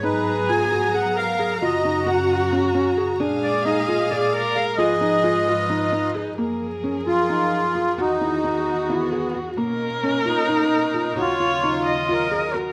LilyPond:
<<
  \new Staff \with { instrumentName = "Accordion" } { \time 7/8 \key ees \minor \tempo 4 = 132 ces''4 aes''4 ges''8 f''4 | ees''4 ges''4 r4. | r8 d''8 ees''4 d''4 f''8 | ees''2. r8 |
r4. f'2 | dis'2 b4 r8 | r4. dis'2 | f'2 bes'4 r8 | }
  \new Staff \with { instrumentName = "Viola" } { \time 7/8 \key ees \minor aes'2~ aes'8 bes'4 | ges'2.~ ges'8 | aes'2~ aes'8 bes'4 | aes'4. f'4. ees'8 |
aes'2.~ aes'8 | fis'2.~ fis'8 | ais'2.~ ais'8 | des''4. ees''4. bes'8 | }
  \new Staff \with { instrumentName = "Felt piano" } { \time 7/8 \key ees \minor ees'4 f'8 ges'8 aes'4 aes'8 | f'8 ees'8 ges'4 des'8 des'8 aes'8 | d'4 ees'8 f'8 aes'4 aes'8 | f'8 ees'8 f'4 ees'8 ees'8 aes'8 |
bes4 des'8 f'8 ees'4 f'8 | fis'8 e'8 dis'4 e'8 gis'8 fis'8 | ais4 cis'8 f'8 dis'4 f'8 | ges'8 f'8 ees'4 f'8 aes'8 ges'8 | }
  \new Staff \with { instrumentName = "String section" } { \clef bass \time 7/8 \key ees \minor << { bes''2.~ bes''8~ | bes''2.~ bes''8 | f''2.~ f''8 | ees''2.~ ees''8 |
bes'2.~ bes'8 | r2. r8 | dis'2.~ dis'8 | f'2.~ f'8 | } \\ { <aes, ges ces'>2.~ <aes, ges ces'>8 | <ges, des ges'>2.~ <ges, des ges'>8 | <bes, aes>2.~ <bes, aes>8 | <aes, f ces''>2.~ <aes, f ces''>8 |
<ges, f aes'>2.~ <ges, f aes'>8 | <e, dis fis'>2.~ <e, dis fis'>8 | <b, ais cis'>2.~ <b, ais cis'>8 | <ees, des ges>2.~ <ees, des ges>8 | } >> }
>>